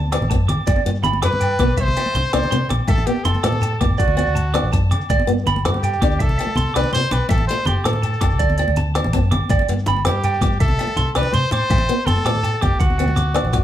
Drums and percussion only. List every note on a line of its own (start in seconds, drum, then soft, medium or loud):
0.12 snare medium
0.12 closed hi-hat medium
0.12 low agogo medium
0.22 low conga medium
0.31 kick medium
0.31 closed hi-hat soft
0.31 high conga medium
0.49 closed hi-hat medium
0.49 low conga medium
0.49 low agogo medium
0.67 kick medium
0.67 closed hi-hat medium
0.67 high conga loud
0.67 low agogo medium
0.67 shekere medium
0.76 low conga medium
0.86 closed hi-hat soft
0.95 shekere soft
1.03 closed hi-hat soft
1.03 low conga medium
1.03 low agogo medium
1.03 shekere medium
1.13 high conga medium
1.23 snare medium
1.23 closed hi-hat medium
1.23 low conga soft
1.33 low conga medium
1.41 closed hi-hat soft
1.41 low agogo medium
1.41 shekere medium
1.51 shekere soft
1.59 kick medium
1.59 snare soft
1.59 closed hi-hat medium
1.59 high conga medium
1.59 low conga medium
1.59 low agogo medium
1.59 shekere soft
1.68 shekere soft
1.77 kick medium
1.77 closed hi-hat medium
1.77 shekere medium
1.87 low conga medium
1.87 shekere soft
1.97 closed hi-hat soft
1.97 low agogo medium
2.06 high conga medium
2.14 closed hi-hat soft
2.14 low conga medium
2.14 shekere medium
2.33 snare medium
2.33 closed hi-hat medium
2.33 low agogo medium
2.43 low conga medium
2.51 closed hi-hat soft
2.51 high conga medium
2.51 shekere medium
2.69 closed hi-hat soft
2.69 low conga medium
2.69 low agogo medium
2.88 kick medium
2.88 closed hi-hat medium
2.88 high conga loud
2.88 low conga soft
2.88 low agogo medium
2.88 shekere medium
2.98 low conga medium
2.98 shekere soft
3.07 closed hi-hat soft
3.17 low conga soft
3.25 closed hi-hat soft
3.25 low conga medium
3.25 low agogo medium
3.25 shekere medium
3.34 high conga medium
3.34 low conga soft
3.34 shekere soft
3.43 snare medium
3.43 closed hi-hat medium
3.43 shekere soft
3.52 low conga medium
3.61 closed hi-hat soft
3.61 low agogo medium
3.61 shekere medium
3.81 kick medium
3.81 closed hi-hat soft
3.81 high conga medium
3.81 low conga medium
3.81 low agogo medium
3.98 kick medium
3.98 closed hi-hat medium
3.98 shekere medium
4.08 low conga medium
4.17 closed hi-hat medium
4.17 high conga soft
4.17 low agogo medium
4.26 shekere soft
4.36 closed hi-hat soft
4.36 high conga medium
4.36 shekere medium
4.54 snare medium
4.54 closed hi-hat medium
4.54 high conga medium
4.54 low agogo medium
4.73 kick medium
4.73 closed hi-hat soft
4.73 low conga medium
4.73 shekere medium
4.91 closed hi-hat soft
4.91 low conga medium
4.91 low agogo medium
4.91 shekere soft
5.01 shekere soft
5.10 kick medium
5.10 closed hi-hat medium
5.10 high conga medium
5.10 low agogo medium
5.10 shekere medium
5.20 low conga medium
5.28 closed hi-hat soft
5.38 shekere soft
5.46 closed hi-hat soft
5.46 low conga medium
5.46 low agogo medium
5.46 shekere medium
5.56 high conga medium
5.65 snare medium
5.65 closed hi-hat medium
5.65 low conga soft
5.74 low conga medium
5.83 closed hi-hat soft
5.83 low agogo medium
5.83 shekere medium
5.93 shekere soft
6.02 kick medium
6.02 closed hi-hat soft
6.02 high conga medium
6.02 low conga medium
6.02 low agogo medium
6.11 shekere soft
6.20 kick medium
6.20 closed hi-hat medium
6.20 shekere medium
6.29 low conga medium
6.29 shekere soft
6.39 closed hi-hat soft
6.39 low agogo medium
6.47 high conga medium
6.56 closed hi-hat soft
6.56 low conga medium
6.56 shekere medium
6.75 snare medium
6.75 closed hi-hat medium
6.75 low agogo medium
6.84 low conga medium
6.93 closed hi-hat medium
6.93 high conga medium
6.93 shekere medium
7.11 closed hi-hat soft
7.11 low conga medium
7.11 low agogo medium
7.29 kick medium
7.29 closed hi-hat medium
7.29 high conga loud
7.29 low agogo medium
7.29 shekere medium
7.38 low conga medium
7.49 closed hi-hat soft
7.58 shekere soft
7.65 closed hi-hat soft
7.65 low conga medium
7.65 low agogo medium
7.65 shekere medium
7.84 snare medium
7.84 closed hi-hat medium
7.84 low conga soft
7.93 low conga medium
8.03 closed hi-hat soft
8.03 low agogo medium
8.03 shekere medium
8.13 shekere soft
8.21 kick medium
8.21 closed hi-hat soft
8.21 high conga medium
8.21 low conga medium
8.21 low agogo medium
8.21 shekere soft
8.31 shekere soft
8.39 kick medium
8.39 closed hi-hat medium
8.39 shekere medium
8.49 low conga medium
8.49 shekere soft
8.58 closed hi-hat soft
8.58 low agogo medium
8.68 high conga medium
8.76 closed hi-hat soft
8.76 low conga medium
8.76 shekere medium
8.95 snare medium
8.95 closed hi-hat medium
8.95 low agogo medium
9.04 low conga medium
9.13 kick medium
9.13 closed hi-hat soft
9.13 high conga medium
9.13 shekere medium
9.32 closed hi-hat soft
9.32 low conga loud
9.32 low agogo medium
9.49 kick medium
9.49 closed hi-hat medium
9.49 high conga loud
9.49 low agogo medium
9.49 shekere medium
9.59 low conga medium
9.69 closed hi-hat soft
9.79 shekere soft
9.86 closed hi-hat soft
9.86 low conga medium
9.86 low agogo medium
9.86 shekere medium
9.96 high conga medium
10.05 snare loud
10.05 closed hi-hat medium
10.24 closed hi-hat soft
10.24 low agogo medium
10.24 shekere loud
10.34 shekere soft
10.41 kick medium
10.41 snare soft
10.41 closed hi-hat medium
10.41 high conga medium
10.41 low conga medium
10.41 low agogo medium
10.41 shekere soft
10.52 shekere soft
10.60 kick medium
10.60 closed hi-hat medium
10.60 shekere medium
10.68 low conga medium
10.68 shekere soft
10.79 closed hi-hat soft
10.79 low agogo medium
10.87 high conga medium
10.96 closed hi-hat medium
10.96 low conga medium
10.96 shekere medium
11.15 snare medium
11.15 closed hi-hat medium
11.15 low agogo medium
11.23 low conga medium
11.33 closed hi-hat soft
11.33 high conga medium
11.33 shekere loud
11.51 closed hi-hat medium
11.51 low conga medium
11.51 low agogo medium
11.70 kick medium
11.70 closed hi-hat medium
11.70 high conga medium
11.70 low agogo medium
11.70 shekere loud
11.78 low conga medium
11.78 shekere soft
11.89 closed hi-hat soft
12.07 closed hi-hat soft
12.07 low conga medium
12.07 low agogo medium
12.07 shekere medium
12.16 high conga medium
12.16 low conga soft
12.26 snare loud
12.26 closed hi-hat medium
12.35 low conga medium
12.35 shekere soft
12.43 closed hi-hat soft
12.43 low agogo medium
12.43 shekere loud
12.53 low conga soft
12.61 kick medium
12.61 closed hi-hat soft
12.61 high conga medium
12.61 low conga medium
12.61 low agogo medium
12.61 shekere soft
12.80 kick medium
12.80 closed hi-hat medium
12.80 shekere medium
12.90 low conga medium
12.99 closed hi-hat soft
12.99 low agogo medium
13.07 high conga medium
13.07 low conga soft
13.07 shekere soft
13.16 closed hi-hat soft
13.16 low conga medium
13.16 shekere medium
13.35 snare medium
13.35 closed hi-hat medium
13.35 low agogo medium
13.45 low conga medium
13.53 kick medium
13.53 closed hi-hat soft
13.53 high conga medium
13.53 low conga soft
13.53 shekere medium